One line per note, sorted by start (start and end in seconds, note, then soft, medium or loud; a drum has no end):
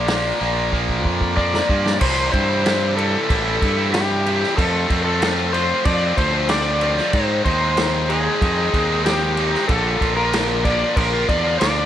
0.00 0.31 A#1 medium
0.00 1.34 D5 medium
0.07 0.39 A#2 medium
0.07 0.39 F3 medium
0.07 0.40 A#3 medium
0.07 snare loud
0.07 open hi-hat medium
0.40 1.05 A#1 medium
0.40 0.70 A#2 medium
0.40 0.71 F3 medium
0.40 0.72 A#3 medium
0.72 1.35 A#2 medium
0.72 1.35 F3 medium
0.72 1.36 A#3 loud
0.72 kick medium
0.89 kick medium
1.05 1.60 F2 medium
1.05 kick medium
1.21 kick medium
1.36 1.67 A#2 medium
1.36 1.68 F3 loud
1.36 1.69 A#3 medium
1.36 2.01 D5 loud
1.36 kick medium
1.54 snare medium
1.68 1.97 G2 medium
1.68 1.99 A#2 medium
1.68 1.99 F3 medium
1.68 2.00 A#3 loud
1.68 kick loud
1.86 snare medium
2.00 2.29 C2 loud
2.00 2.62 C3 medium
2.00 2.31 E3 loud
2.00 2.32 G3 medium
2.00 2.34 C4 loud
2.00 2.33 E4 loud
2.00 2.31 C5 loud
2.00 kick loud
2.00 crash loud
2.00 crash medium
2.32 3.15 G2 loud
2.32 2.63 E3 medium
2.32 2.49 G3 medium
2.32 2.49 C4 medium
2.32 2.47 E4 medium
2.32 2.93 C5 loud
2.32 kick medium
2.32 crash medium
2.48 2.64 G3 medium
2.48 2.65 C4 medium
2.48 2.65 E4 medium
2.63 3.28 C3 medium
2.63 2.94 E3 loud
2.63 2.96 G3 loud
2.63 2.97 C4 loud
2.63 2.97 E4 medium
2.63 snare loud
2.63 crash medium
2.96 3.27 E3 medium
2.96 3.28 G3 medium
2.96 3.30 C4 medium
2.96 3.29 E4 medium
2.96 3.93 A4 loud
2.96 crash medium
3.29 3.57 A1 loud
3.29 3.59 E3 medium
3.29 3.46 G3 medium
3.29 3.46 C4 medium
3.29 3.43 E4 medium
3.29 kick loud
3.29 crash medium
3.45 3.60 G3 medium
3.45 3.61 C4 medium
3.45 3.61 E4 medium
3.60 4.44 G2 medium
3.60 3.92 E3 medium
3.60 3.78 G3 medium
3.60 3.77 C4 medium
3.60 3.75 E4 medium
3.60 kick medium
3.60 crash medium
3.76 3.93 G3 medium
3.76 3.95 C4 medium
3.76 3.94 E4 medium
3.93 4.55 C3 loud
3.93 4.24 E3 loud
3.93 4.25 G3 loud
3.93 4.27 C4 loud
3.93 4.26 E4 loud
3.93 4.57 G4 loud
3.93 snare loud
3.93 crash medium
4.25 4.55 E3 medium
4.25 4.42 G3 medium
4.25 4.41 C4 medium
4.25 4.39 E4 medium
4.25 crash medium
4.41 4.56 G3 medium
4.41 4.59 C4 medium
4.41 4.55 E4 medium
4.41 snare soft
4.57 4.85 F2 loud
4.57 4.87 F3 medium
4.57 4.88 A3 loud
4.57 4.90 C4 loud
4.57 4.90 F4 loud
4.57 5.04 A4 loud
4.57 kick loud
4.57 crash medium
4.88 5.72 F2 medium
4.88 5.19 F3 medium
4.88 5.05 A3 medium
4.88 5.05 C4 medium
4.88 5.03 F4 medium
4.88 kick medium
4.88 crash medium
5.04 5.20 A3 medium
5.04 5.21 C4 medium
5.04 5.21 F4 medium
5.04 5.55 A4 loud
5.20 5.51 F3 loud
5.20 5.52 A3 loud
5.20 5.54 C4 medium
5.20 5.53 F4 loud
5.20 snare loud
5.20 crash medium
5.52 5.84 F3 medium
5.52 5.84 A3 medium
5.52 5.86 C4 medium
5.52 5.86 F4 medium
5.52 5.86 C5 loud
5.52 crash medium
5.85 6.13 F2 loud
5.85 6.16 F3 medium
5.85 6.02 A3 medium
5.85 6.01 C4 medium
5.85 6.00 F4 medium
5.85 6.18 D5 loud
5.85 kick loud
5.85 crash medium
6.01 6.17 A3 medium
6.01 6.17 C4 medium
6.01 6.19 F4 medium
6.16 6.99 D2 medium
6.16 6.48 F3 medium
6.16 6.35 A3 medium
6.16 6.34 C4 medium
6.16 6.32 F4 medium
6.16 6.47 C5 loud
6.16 kick medium
6.16 crash medium
6.33 6.49 A3 medium
6.33 6.50 C4 medium
6.33 6.50 F4 medium
6.49 6.79 F3 loud
6.49 6.80 A3 loud
6.49 6.81 C4 loud
6.49 6.82 F4 loud
6.49 7.15 D5 loud
6.49 snare loud
6.49 crash medium
6.80 7.11 F3 medium
6.80 6.97 A3 medium
6.80 6.96 C4 medium
6.80 6.95 F4 medium
6.80 crash medium
6.96 7.12 A3 medium
6.96 7.11 C4 medium
6.96 7.11 F4 medium
6.96 snare soft
7.13 7.76 G#2 medium
7.13 7.41 G#2 medium
7.13 7.43 D#3 loud
7.13 7.44 G#3 loud
7.13 7.45 C4 medium
7.13 7.46 D#4 loud
7.13 7.44 C5 loud
7.13 kick loud
7.13 crash medium
7.45 8.27 D#2 loud
7.45 7.77 D#3 medium
7.45 7.62 G#3 medium
7.45 7.61 C4 medium
7.45 7.59 D#4 medium
7.45 8.11 C5 loud
7.45 kick medium
7.45 crash medium
7.60 7.77 G#3 medium
7.60 7.78 C4 medium
7.60 7.78 D#4 medium
7.77 8.41 G#2 medium
7.77 8.08 D#3 loud
7.77 8.08 G#3 loud
7.77 8.10 C4 loud
7.77 8.10 D#4 loud
7.77 snare loud
7.77 crash medium
8.09 8.40 D#3 medium
8.09 8.41 G#3 medium
8.09 8.42 C4 medium
8.09 8.43 D#4 medium
8.09 9.05 G#4 medium
8.09 crash medium
8.41 8.69 F2 loud
8.41 8.72 D#3 medium
8.41 8.58 G#3 medium
8.41 8.58 C4 medium
8.41 8.56 D#4 medium
8.41 kick loud
8.41 crash medium
8.57 8.73 G#3 medium
8.57 8.74 C4 medium
8.57 8.74 D#4 medium
8.73 9.55 D#2 medium
8.73 9.04 D#3 medium
8.73 8.91 G#3 medium
8.73 8.90 C4 medium
8.73 8.89 D#4 medium
8.73 kick medium
8.73 crash medium
8.90 9.06 G#3 medium
8.90 9.06 C4 medium
8.90 9.07 D#4 medium
9.05 9.67 G#2 loud
9.05 9.36 D#3 loud
9.05 9.37 G#3 loud
9.05 9.38 C4 loud
9.05 9.39 D#4 loud
9.05 9.68 G4 medium
9.05 snare loud
9.05 crash medium
9.37 9.67 D#3 medium
9.37 9.54 G#3 medium
9.37 9.53 C4 medium
9.37 9.51 D#4 medium
9.37 crash medium
9.53 9.68 G#3 medium
9.53 9.68 C4 medium
9.53 9.67 D#4 medium
9.53 snare soft
9.68 9.96 A#1 loud
9.68 10.31 A#2 medium
9.68 9.99 D3 medium
9.68 10.01 F3 medium
9.68 10.01 A#3 loud
9.68 10.02 F4 loud
9.68 10.16 A4 medium
9.68 kick loud
9.68 crash medium
10.01 10.83 A#1 medium
10.01 10.32 D3 medium
10.01 10.18 F3 medium
10.01 10.18 A#3 medium
10.01 10.16 F4 medium
10.01 kick medium
10.01 crash medium
10.17 10.33 F3 medium
10.17 10.33 A#3 medium
10.17 10.34 F4 medium
10.17 10.66 A#4 medium
10.32 10.96 A#2 medium
10.32 10.63 D3 loud
10.32 10.64 F3 loud
10.32 10.65 A#3 loud
10.32 10.66 F4 medium
10.32 snare loud
10.32 crash medium
10.64 10.95 D3 medium
10.64 10.96 F3 medium
10.64 10.96 A#3 medium
10.64 10.97 F4 medium
10.64 10.97 D5 medium
10.64 kick medium
10.64 crash medium
10.96 11.24 A#1 loud
10.96 11.26 D3 medium
10.96 11.14 F3 medium
10.96 11.13 A#3 medium
10.96 11.11 F4 medium
10.96 11.26 A#4 loud
10.96 kick loud
10.96 crash medium
11.13 11.28 F3 medium
11.13 11.28 A#3 medium
11.13 11.29 F4 medium
11.28 11.57 E2 medium
11.28 11.60 D3 medium
11.28 11.45 F3 medium
11.28 11.44 A#3 medium
11.28 11.43 F4 medium
11.28 11.59 D5 loud
11.28 kick medium
11.28 crash medium
11.44 11.61 F3 medium
11.44 11.62 A#3 medium
11.44 11.62 F4 medium
11.60 11.86 D2 medium
11.60 11.86 A#2 loud
11.60 11.86 D3 loud
11.60 11.86 F3 loud
11.60 11.86 A#3 loud
11.60 11.86 F4 loud
11.60 11.86 D5 loud
11.60 snare loud
11.60 crash medium